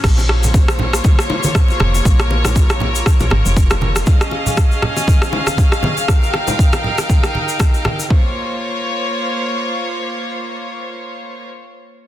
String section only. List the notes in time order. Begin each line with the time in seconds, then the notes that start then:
0.04 A#3 F4 C5 C#5
2.05 A#4
4.07 C#4 G#4 D#5 F5
6.08 D#4 A#4 G5
8.11 A#3 F4 C5 C#5